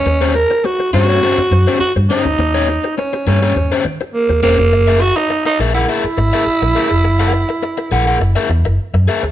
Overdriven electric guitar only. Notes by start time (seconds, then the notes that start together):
0.06 muted overdriven electric guitar stroke
0.21 C#4 G4 C5
0.35 muted overdriven electric guitar stroke
0.51 muted overdriven electric guitar stroke
0.64 muted overdriven electric guitar stroke
0.80 muted overdriven electric guitar stroke
0.93 C#4 G4 C5
1.09 C#4 G4 C#5
1.23 C#4 G4 C5
1.52 muted overdriven electric guitar stroke
1.67 C#4 G4 C5
1.96 muted overdriven electric guitar stroke
2.10 C#4 G4 C5
2.25 muted overdriven electric guitar stroke
2.39 muted overdriven electric guitar stroke
2.54 C#4 G4 C#5
2.68 muted overdriven electric guitar stroke
2.84 muted overdriven electric guitar stroke
2.98 muted overdriven electric guitar stroke
3.13 muted overdriven electric guitar stroke
3.27 C#4 G4 C#5
3.42 C#4 G4 C#5
3.56 muted overdriven electric guitar stroke
3.72 C#4 G4 C5
3.85 muted overdriven electric guitar stroke
4.01 muted overdriven electric guitar stroke
4.29 muted overdriven electric guitar stroke
4.43 C#4 G4 C5
4.59 muted overdriven electric guitar stroke
4.72 muted overdriven electric guitar stroke
4.87 G#4 A#4 E5
5.01 muted overdriven electric guitar stroke
5.17 muted overdriven electric guitar stroke
5.30 muted overdriven electric guitar stroke
5.45 muted overdriven electric guitar stroke
5.60 G#4 A#4 E5
5.75 G#4 A#4 F#5
5.88 G#4 A#4 E5
6.17 muted overdriven electric guitar stroke
6.33 G#4 A#4 E5
6.62 muted overdriven electric guitar stroke
6.75 G#4 A#4 E5
6.90 muted overdriven electric guitar stroke
7.04 muted overdriven electric guitar stroke
7.19 G#4 A#4 F#5
7.33 muted overdriven electric guitar stroke
7.49 muted overdriven electric guitar stroke
7.63 muted overdriven electric guitar stroke
7.78 muted overdriven electric guitar stroke
7.91 G#4 A#4 F#5
8.07 G#4 A#4 F#5
8.21 muted overdriven electric guitar stroke
8.36 G#4 A#4 E5
8.50 muted overdriven electric guitar stroke
8.65 muted overdriven electric guitar stroke
8.94 muted overdriven electric guitar stroke
9.08 G#4 A#4 E5
9.24 muted overdriven electric guitar stroke